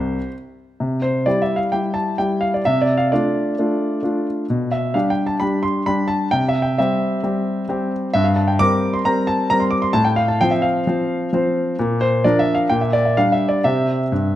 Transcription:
Already playing: C2 G4 C5
0.80 C3
1.02 C5
1.26 G3 E4 G4 D5
1.42 E5
1.56 F5
1.72 G3 E4 G4 G5
1.94 A5
2.18 G3 E4 G4 G5
2.41 F5
2.54 D5
2.65 C3 E5
2.82 D5
2.97 F5
3.12 A3 D4 F4 D5
3.59 A3 D4 F4
4.03 A3 D4 F4
4.50 B2
4.72 E5
4.94 G3 D4 G4 F5
5.10 G5
5.26 A5
5.40 G3 D4 G4 B5
5.63 C6
5.86 G3 D4 G4 B5
6.08 A5
6.31 C3 G5
6.49 E5
6.62 G5
6.78 G3 C4 G4 E5
7.23 G3 C4 G4
7.69 G3 C4 G4
8.14 G2 E5
8.24 F5
8.36 A5
8.48 G5
8.59 G3 C4 A#4 D6
8.93 C6
9.05 G3 C4 A#4 A#5
9.27 A5
9.50 G3 C4 A#4 A#5
9.60 C6
9.71 D6
9.82 C6
9.93 A2 A5
10.05 G5
10.16 F5
10.28 A5
10.41 F3 C4 C5 G5
10.51 E5
10.62 F5
10.87 F3 C4 C5
11.33 F3 C4 C5
11.79 A#2
12.01 C5
12.24 F3 D4 A#4 D5
12.39 E5
12.55 F5
12.70 A#2 G5
12.81 E5
12.93 D5
13.05 E5
13.17 G3 D4 G4 F5
13.32 E5
13.49 D5
13.64 C3 C4 G4 E5
14.12 G2

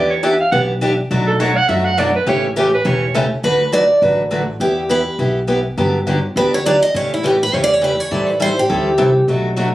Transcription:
Already playing: E2 E3 B3 D4 G4
0.10 C#5
0.23 E3 B3 D4 G4 E5
0.41 F5
0.52 B1 E3 B3 D4 G4 F#5
0.81 E3 B3 D4 G4
1.11 B1 B2 F#3 A3 D4 F#4
1.27 A4
1.40 B2 F#3 A3 D4 F#4 C#5
1.57 F#5
1.68 F#2 B2 F#3 A3 D4 F#4 E5
1.85 F#5
1.98 B2 F#3 A3 D4 F#4 D5
2.16 B4
2.26 A1 C#3 E3 A3 C#4 G4 C#5
2.46 E4
2.56 C#3 E3 A3 C#4 G4
2.74 B4
2.85 E1 C#3 E3 A3 C#4 G4 C#5
3.15 C#3 E3 A3 C#4 G4
3.43 D2 D3 F#3 A3 D4 F#4 B4
3.72 D3 F#3 A3 D4 F#4 B4 D5
4.02 A1 D3 F#3 A3 D4 F#4 B4
4.31 D3 F#3 A3 D4 F#4 B4
4.60 E2 E3 B3 E4 G4
4.89 E3 B3 E4 G4 B4
5.19 B1 E3 B3 E4 G4
5.47 E3 B3 E4 G4
5.77 G2 D3 F#3 B3 D4 G4
6.07 D3 F#3 B3 D4 G4
6.36 D2 D3 F#3 B3 D4 G4 B4
6.54 C#5
6.66 D3 F#3 B3 D4 G4 D5
6.83 D#5
6.94 A2 C#3 E3 A3 C#4 G4 C#5
7.14 E4
7.23 C#3 E3 A3 C#4 G4
7.43 B4
7.53 E2 C#3 E3 A3 C#4 G4 C#5
7.64 D5
7.73 C#5
7.81 C#3 E3 A3 C#4 G4 B4
8.00 C#5
8.11 A2 E3 G3 C4 E4 A4 D5
8.30 B4
8.40 E3 G3 C4 E4 A4 C5
8.59 G4
8.69 D2 E3 G3 C4 E4 A4
8.98 C2 E3 G3 C4 E4 A4
9.28 B1 B2 F#3 A3 D4 F#4
9.56 B2 F#3 A3 D4 F#4

